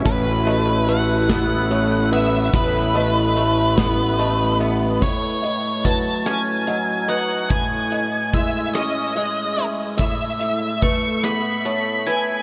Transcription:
<<
  \new Staff \with { instrumentName = "Lead electric guitar" } { \time 6/8 \key a \lydian \tempo 4. = 48 b'4 fis''4. e''8 | b'2~ b'8 r8 | cis''4 a''8 gis''4 fis''8 | gis''4 e''8 dis''4 r8 |
e''4 cis'''8 b''4 gis''8 | }
  \new Staff \with { instrumentName = "Felt piano" } { \time 6/8 \key a \lydian r8 dis''8 b'4 cis''8 b'8~ | b'8 dis''8 e''4 dis''8 e''8 | r8 dis''8 b'4 dis''8 b'8~ | b'8 dis''8 e'4 dis''8 e''8 |
r8 e''8 b'4 cis''8 b'8 | }
  \new Staff \with { instrumentName = "Ambient pad" } { \time 6/8 \key a \lydian <a e' b'>2.~ | <a e' b'>2. | r2. | r2. |
r2. | }
  \new Staff \with { instrumentName = "Clean electric guitar" } { \time 6/8 \key a \lydian a,8 a8 a8 b8 a8 b8 | a,8 a8 a8 b8 a8 b8 | a,4 fis8 cis'8 fis8 dis'8 | a,4 gis8 cis'8 gis4 |
a,4 a8 b8 a8 e'8 | }
  \new Staff \with { instrumentName = "Fingered electric bass" } { \clef bass \time 6/8 \key a \lydian a,,2. | a,,2. | r2. | r2. |
r2. | }
  \new DrumStaff \with { instrumentName = "Drums" } \drummode { \time 6/8 <hh bd>8 hh8 hh8 <hh bd sn>8 hh8 hh8 | <hh bd>8 hh8 hh8 <hh bd sn>8 hh8 hh8 | <hh bd>8 hh8 <hh bd>8 <hh ss>8 hh8 hh8 | <hh bd>8 hh8 <hh bd>8 <hh ss>8 hh8 hh8 |
<hh bd>8 hh8 <hh bd>8 <hh ss>8 hh8 hh8 | }
>>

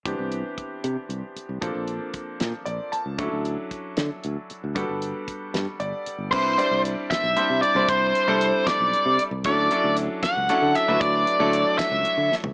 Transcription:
<<
  \new Staff \with { instrumentName = "Lead electric guitar" } { \time 6/8 \key c \lydian \tempo 4. = 77 r2. | r2. | r2. | r2. |
c''4 r8 e''4 d''8 | c''4. d''4 r8 | d''4 r8 fis''4 e''8 | d''4. e''4 r8 | }
  \new Staff \with { instrumentName = "Grand piano" } { \time 6/8 \key c \lydian << { r2. | r2 d''8 a''8 | r2. | r2 d''4 |
r2. | r2. | r2. | r2. | } \\ { <e b c' d' g'>2. | <f bes c' d' a'>2. | <fis cis' d' e' a'>2. | <g b d' fis' a'>2. |
<g c' d' e' b'>8 <g c' d' e' d''>4. <g c' d' e' c''>8. <g c' d' e' c''>16~ | <g c' d' e' c''>8. <g c' d' e' a'>2 r16 | <fis cis' d' e' a'>8 <fis cis' d' e' a'>4. <fis cis' d' e' a'>8. <fis a d' e' b'>16~ | <fis a d' e' b'>8. <fis a d' e' a'>2 r16 | } >> }
  \new Staff \with { instrumentName = "Fingered electric bass" } { \clef bass \time 6/8 \key c \lydian c,16 c,8 r8. c16 r16 c,16 r8 c,16 | bes,,16 bes,,8 r8. bes,16 r16 bes,,16 r8 des,16 | d,16 d,8 r8. d16 r16 d,16 r8 d,16 | g,,16 g,,8 r8. g,16 r16 g,,16 r8 g,,16 |
c,8 r16 c,8 r8 b,,16 r16 c16 r16 c,16 | c,8 r16 c,8 r8 b,,16 r16 c16 r16 c,16 | d,8 r16 d,8 r8 cis,16 r16 d16 r16 d,16 | d,8 r16 d,8 r8 cis,16 r16 d16 r16 cis,16 | }
  \new DrumStaff \with { instrumentName = "Drums" } \drummode { \time 6/8 <hh bd>8 hh8 <hh bd>8 hh8 hh8 hh8 | <hh bd>8 hh8 <hh bd>8 <hh sn>8 hh8 hh8 | <hh bd>8 hh8 <hh bd>8 <hh sn>8 hh8 hh8 | <hh bd>8 hh8 <hh bd>8 <hh sn>8 hh8 hh8 |
<cymc bd>8 hh8 hh8 <hh bd sn>8 hh8 hh8 | <hh bd>8 hh8 hh8 <hh bd sn>8 hh8 hh8 | <hh bd>8 hh8 hh8 <hh bd sn>8 hh8 hh8 | <hh bd>8 hh8 hh8 <hh bd sn>8 hh8 sn16 tomfh16 | }
>>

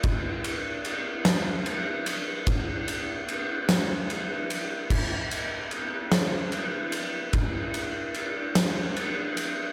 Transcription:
\new DrumStaff \with { instrumentName = "Drums" } \drummode { \time 6/8 \tempo 4. = 49 <bd cymr>8 cymr8 cymr8 <cymr sn>8 cymr8 cymr8 | <bd cymr>8 cymr8 cymr8 <cymr sn>8 cymr8 cymr8 | <cymc bd>8 cymr8 cymr8 <cymr sn>8 cymr8 cymr8 | <bd cymr>8 cymr8 cymr8 <cymr sn>8 cymr8 cymr8 | }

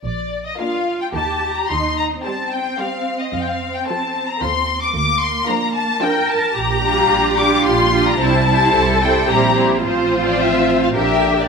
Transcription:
<<
  \new Staff \with { instrumentName = "Violin section" } { \time 3/4 \key bes \major \tempo 4 = 110 d''8. ees''16 f''8. g''16 a''8. bes''16 | c'''8 bes''8 a''8 g''8 f''8. ees''16 | f''32 g''32 f''8 g''16 a''8. bes''16 c'''8. d'''16 | d'''8 c'''8 bes''8 a''8 g''8 a''8 |
\key g \dorian bes''4. d'''8 c'''8. bes''16 | a''4. g''8 bes''8 r8 | c''8. d''16 e''8. f''16 e''8. d''16 | }
  \new Staff \with { instrumentName = "Violin section" } { \time 3/4 \key bes \major r4 <f' bes'>4 <g' bes'>4 | r4 <g' c''>4 <g' c''>4 | r4 <a' c''>4 <a' c''>4 | r4 <f' bes'>4 <f' bes'>4 |
\key g \dorian r8 <f' g'>4 <f' g'>4 <f' g'>8 | <e' c''>8 <e' c''>4 <e' c''>8 <e' c''>8 <e' c''>8 | <f' c''>2 <g' bes'>4 | }
  \new Staff \with { instrumentName = "Cello section" } { \time 3/4 \key bes \major r4 f'4 g'4 | ees'4 c'2~ | c'2. | bes2 bes'4 |
\key g \dorian g'2 f'4 | e'4 a'4 g'4 | f'2 g'4 | }
  \new Staff \with { instrumentName = "Viola section" } { \time 3/4 \key bes \major r4 <bes d'>4 <bes ees'>4 | r4 <g c'>4 <g c'>4 | r4 <f c'>4 <f f'>4 | r4 <f d'>4 <f d'>4 |
\key g \dorian r8 <g d'>4 <g d'>4 <g d'>8 | <g c'>8 <g c'>4 <g c'>8 <g c'>8 <g c'>8 | <f c'>2 <d d'>4 | }
  \new Staff \with { instrumentName = "Double bass section" } { \clef bass \time 3/4 \key bes \major bes,,4 r4 ees,4 | ees,4 r2 | f,4 r4 ees,4 | d,4 r2 |
\key g \dorian bes,,4 bes,,4 bes,,4 | c,4 c,4 bes,,4 | a,,2 bes,,4 | }
>>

